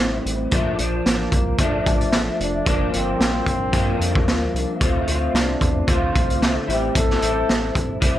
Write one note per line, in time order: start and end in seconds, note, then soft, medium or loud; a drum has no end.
0.00 0.20 A1 medium
0.00 0.52 A2 medium
0.00 0.52 G3 medium
0.00 0.27 C4 loud
0.00 0.52 C4 medium
0.00 0.53 E4 medium
0.25 0.47 A1 medium
0.25 closed hi-hat medium
0.51 0.74 A#1 medium
0.51 0.79 A#2 medium
0.51 0.79 F3 medium
0.51 0.79 A3 medium
0.51 0.77 D4 medium
0.51 kick loud
0.51 closed hi-hat medium
0.78 1.01 A#1 loud
0.78 1.59 F3 soft
0.78 1.61 D4 medium
0.78 closed hi-hat medium
1.06 1.27 A1 medium
1.06 1.63 A#3 medium
1.06 snare medium
1.06 closed hi-hat medium
1.32 1.54 C2 medium
1.32 kick medium
1.32 closed hi-hat medium
1.58 1.80 A#1 medium
1.58 2.66 F3 medium
1.58 2.67 A3 medium
1.58 2.68 D4 medium
1.58 2.14 D4 loud
1.58 kick medium
1.58 closed hi-hat medium
1.86 2.29 A1 medium
1.86 kick medium
1.86 closed hi-hat medium
2.01 closed hi-hat soft
2.13 snare loud
2.13 closed hi-hat medium
2.40 2.61 F1 medium
2.40 2.96 D4 loud
2.40 closed hi-hat medium
2.65 2.88 G1 loud
2.65 3.71 G2 medium
2.65 3.73 F3 medium
2.65 3.73 A#3 medium
2.65 3.75 D4 medium
2.65 kick medium
2.65 closed hi-hat medium
2.93 3.15 G1 medium
2.93 4.55 C4 loud
2.93 closed hi-hat medium
3.20 3.41 A#1 medium
3.20 snare loud
3.20 closed hi-hat medium
3.46 3.75 A#1 medium
3.46 kick medium
3.46 closed hi-hat medium
3.72 4.80 G2 medium
3.72 3.95 G2 medium
3.72 4.81 F3 medium
3.72 4.81 A#3 medium
3.72 4.82 D4 medium
3.72 kick medium
3.72 closed hi-hat medium
3.99 4.28 F2 loud
3.99 closed hi-hat medium
4.15 kick medium
4.27 4.49 D2 medium
4.27 snare loud
4.27 closed hi-hat medium
4.54 4.66 C2 medium
4.54 closed hi-hat medium
4.81 5.02 D2 medium
4.81 5.08 D3 medium
4.81 5.08 A3 medium
4.81 5.08 C4 medium
4.81 5.07 F4 medium
4.81 kick medium
4.81 closed hi-hat medium
5.07 5.29 D2 medium
5.07 5.87 A3 soft
5.07 5.88 C4 soft
5.07 5.87 F4 medium
5.07 closed hi-hat medium
5.34 5.56 C2 medium
5.34 5.91 D4 medium
5.34 snare medium
5.34 closed hi-hat medium
5.61 5.83 E2 medium
5.61 kick medium
5.61 closed hi-hat medium
5.87 6.09 D2 medium
5.87 6.40 D3 medium
5.87 6.42 A3 medium
5.87 6.42 C4 medium
5.87 6.42 F4 medium
5.87 6.42 F4 loud
5.87 kick medium
5.87 closed hi-hat medium
6.15 6.58 C2 medium
6.15 kick medium
6.15 closed hi-hat medium
6.30 closed hi-hat soft
6.41 6.68 D3 medium
6.41 6.69 A3 medium
6.41 6.67 C4 medium
6.41 6.67 F4 medium
6.41 snare loud
6.41 closed hi-hat medium
6.67 6.90 A1 medium
6.67 7.23 A2 medium
6.67 7.22 G3 soft
6.67 7.21 C4 medium
6.67 7.20 E4 medium
6.67 6.98 G4 medium
6.67 closed hi-hat medium
6.95 7.17 A1 medium
6.95 8.03 A4 loud
6.95 kick medium
6.95 closed hi-hat medium
7.10 snare soft
7.21 7.44 A1 medium
7.21 8.00 G3 soft
7.21 8.00 C4 soft
7.21 8.00 E4 soft
7.21 closed hi-hat medium
7.49 7.71 A1 medium
7.49 snare medium
7.49 closed hi-hat medium
7.75 7.97 A#1 medium
7.75 kick medium
7.75 closed hi-hat medium
8.00 8.19 C2 loud
8.00 8.19 A2 medium
8.00 8.19 G3 medium
8.00 8.19 C4 medium
8.00 8.19 E4 medium
8.00 kick medium
8.00 closed hi-hat medium